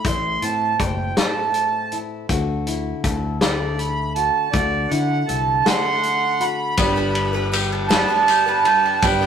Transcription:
Already playing: A3 C4
0.05 A1 A2 E4 C6, kick, closed hi-hat
0.42 A2 C4 A5, closed hi-hat
0.78 F#1 C5 G5, kick, closed hi-hat
1.17 A3 A5, snare, closed hi-hat
1.54 closed hi-hat
1.92 E4, closed hi-hat
2.29 D2 D3 F#4, kick, closed hi-hat
2.67 E4, closed hi-hat
3.04 D2 A4, kick, closed hi-hat
3.41 A3 D5, snare, closed hi-hat
3.78 B5, closed hi-hat
4.14 F#4 A5, closed hi-hat
4.52 D2 D3 F#4 D5, kick, closed hi-hat
4.88 D3 E4 F#5, closed hi-hat
5.26 C2 A4 A5, closed hi-hat
5.65 A3 F#5 C6, snare, closed hi-hat
6.03 closed hi-hat
6.40 F#4 B5, closed hi-hat
6.77 G1 G2 G3 B3 D4 G4 B4 D5, kick, ride, tambourine
6.96 D4 G4 B4, tambourine
7.15 ride
7.33 D4 G4 B4
7.52 G3 D4 G4 B4, ride, tambourine
7.72 D4
7.88 G3 B3 D4 G4 B4 D5 A5, snare, ride
8.08 D4 G4 B4
8.28 G4, ride, tambourine
8.46 D4 G4 B4
8.65 G3 D4 G4 B4, ride
8.86 D4
9.02 G1 G2 G3 B3 D4 G4 B4 D5 G5, kick, ride, tambourine
9.21 D4 G4 B4, tambourine

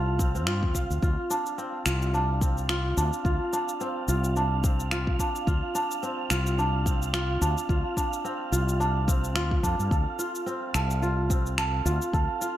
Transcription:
Already playing: C2 C4 F4 A4 F5
0.19 C4, kick, shaker
0.35 C4, shaker
0.47 G2 F4, finger snap, shaker
0.63 kick
0.75 C2 F5, kick, shaker
0.90 D2, shaker
1.02 D2 F4 F5, kick, shaker
1.30 D4, shaker
1.46 shaker
1.58 C4, shaker
1.86 C2 F4, finger snap, shaker
2.02 shaker
2.14 D4, shaker
2.41 C4, kick, shaker
2.58 shaker
2.69 F4, finger snap, shaker
2.97 D2 D4, shaker
3.13 shaker
3.25 D2 F4, kick, shaker
3.53 D4, shaker
3.69 shaker
3.81 C4, shaker
4.08 C2 F4, shaker
4.24 shaker
4.36 D4, shaker
4.64 C4, kick, shaker
4.80 shaker
4.91 F4, finger snap, shaker
5.07 kick
5.19 D4, kick, shaker
5.36 shaker
5.47 D2 F4, kick, shaker
5.75 D4, shaker
5.91 shaker
6.03 C4, shaker
6.30 C2 F4, finger snap, shaker
6.47 shaker
6.58 D4, shaker
6.86 C4, kick, shaker
7.02 shaker
7.13 F4, finger snap, shaker
7.41 D2 D4, shaker
7.58 shaker
7.69 D2 F4, kick, shaker
7.97 D4, kick, shaker
8.13 shaker
8.25 C4, shaker
8.52 C2 F4, shaker
8.69 shaker
8.80 D4, shaker
9.08 C4, kick, shaker
9.24 shaker
9.35 D2 F4, finger snap, shaker
9.51 kick
9.63 F2 D4, kick, shaker
9.79 G2, shaker
9.91 D2 A4, kick, shaker
10.19 F4, shaker
10.35 shaker
10.46 C4, shaker
10.74 C2 A4, finger snap, shaker
10.91 shaker
11.02 F4, shaker
11.30 C4, kick, shaker
11.46 shaker
11.58 A4, finger snap, shaker
11.85 D2 F4, shaker
12.02 shaker
12.13 D2 A4, kick, shaker
12.41 F4, shaker

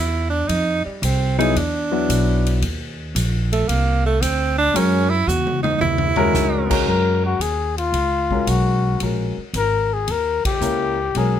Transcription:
Already playing: E2 E4
0.30 D4
0.48 F2 D#4, ride
0.85 G3, muted upright bass stroke
1.02 C2 C4, hi-hat pedal, ride
1.38 F#3 B3 D#4 E4 G#4, ride
1.56 E2 D4, ride
1.92 F#3 B3 E4 F#4
2.09 B1, hi-hat pedal, ride
2.46 ride
2.62 D#2, ride
3.15 A#1, hi-hat pedal, ride
3.52 A3, ride
3.68 C2 A#3, ride
4.06 A3
4.21 D2 C4, hi-hat pedal, ride
4.58 D4
4.74 F#2 G#3 C#4 F#4 A#4, ride
5.10 E4
5.27 E2 F#4, hi-hat pedal, mid tom
5.47 mid tom
5.63 D#4, mid tom
5.80 D#2 E4, floor tom
5.98 floor tom
6.16 G#3 C#4 F#4 A#4, floor tom
6.33 C#2, snare, hi-hat pedal
6.70 G#3 C#4 F#4 A#4, kick, crash
6.85 F#2 A#4
7.25 F#4
7.39 D#2 G#4, hi-hat pedal, ride
7.78 F4, ride
7.92 C#2, ride
8.31 G#3 C#4 F#4 A#4, kick
8.47 B1 F#4, hi-hat pedal, ride
9.00 A#1 G#3 C#4 F#4 A#4, ride
9.38 muted upright bass stroke
9.53 G#1 A#4, hi-hat pedal, ride
9.93 G#4
10.08 D#2 A#4, ride
10.45 G4, muted upright bass stroke, kick, ride
10.61 C#2 A#3 C#4 E4 A#4, hi-hat pedal
11.15 B1 G#3 C#4 F#4 G#4 A#4, ride

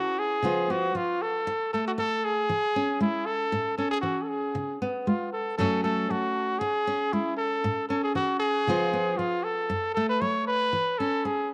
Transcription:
Already playing: E3 C#4 E4 F#4
0.19 G#4
0.42 C#3 F3 B3 F4
0.70 B3 F#4
0.95 F3 F4
1.22 A4
1.47 muted nylon-string guitar stroke
1.73 A3 A4
1.87 F#4
1.98 A4, muted nylon-string guitar stroke
2.25 G#4
2.49 E3
2.76 C#4
3.00 G#3 E4
3.26 A4
3.52 A2
3.77 C#4 A4
3.91 G#4
4.01 E3 F#4
4.22 A4
4.28 G#4
4.55 C#3
4.82 B3
5.07 G#3 F4
5.33 A4
5.58 F#2 F#3 A3 C#4 A4
5.84 A3 A4
6.10 F#3 F#4
6.59 G#4, muted nylon-string guitar stroke
6.87 C#4
7.13 G#3 E4
7.37 A4
7.64 A2
7.89 C#4 A4
8.03 G#4
8.15 E3 F#4
8.39 G#4
8.67 C#3 F3 B3 F4
8.93 B3
9.18 F3 F4
9.44 A4
9.70 F#2
9.94 A3 A4
10.09 B4
10.21 F#3 C#5
10.47 B4
10.73 E3
10.98 C#4 A4
11.25 G#4, muted nylon-string guitar stroke

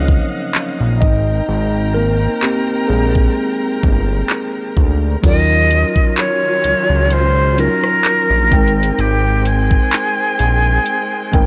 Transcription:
Already playing: C#2 C#3 F3 F#3 C4 C#4 D#4 C5 C#5 D#5 F5 F#5
0.08 kick
0.55 clap
0.81 A#1
1.01 G#1 C4 D#4 A#4 D#5 G5 A#5, kick
1.49 G#1
1.94 A#3 A#4
2.42 A#3 C4 G4, clap
2.88 A#1 G#3 G#4
3.15 kick
3.83 G1, kick
4.30 clap
4.77 D2, kick
5.22 D#2 D#3 F#3 C#4 D#4 F4 A4 D#5, kick, closed hi-hat, crash
5.32 A#4
5.71 closed hi-hat
5.96 kick
6.17 C#5, clap, closed hi-hat
6.64 C#2, closed hi-hat
6.90 C#2
7.11 C5, closed hi-hat
7.57 F#3 C#4 D#4 F4 A#4, closed hi-hat
7.84 cross-stick
8.05 clap, closed hi-hat
8.30 A#1
8.51 G#1 G#3 C4 D#4 A#4 G5, kick, closed hi-hat
8.67 closed hi-hat
8.83 closed hi-hat
8.99 G#1 G4, closed hi-hat
9.45 G#4, closed hi-hat
9.71 kick
9.92 clap, closed hi-hat
10.39 A#1, closed hi-hat
10.86 closed hi-hat
11.32 G1 G#3 C4 D#4 A#4 G5, kick, closed hi-hat

